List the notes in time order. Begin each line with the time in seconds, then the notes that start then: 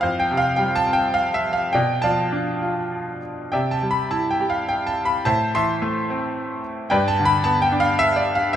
0.01 F2 C5 F5
0.20 G5
0.31 C3
0.37 F5
0.56 G3 G5
0.76 A5
0.87 C4
0.93 G5
1.14 F5
1.34 E5
1.53 F5
1.73 B2 D5 G5
2.02 F3 D5 F5 A5
2.32 D4
2.62 F4
3.52 C3 D5 E5 G5
3.71 A5
3.82 G3
3.91 B5
4.11 E4 A5
4.31 G5
4.40 G4
4.50 F5
4.69 G5
4.87 A5
5.05 B5
5.25 A2 C5 E5 A5
5.55 E3 E5 A5 C6
5.82 A3
6.10 C4
6.90 G2 B4 D5 G5
7.08 A5
7.19 D3
7.25 B5
7.44 B3 A5
7.62 G5
7.72 D4
7.80 F5
7.99 E5
8.16 D5
8.35 F5
8.53 E5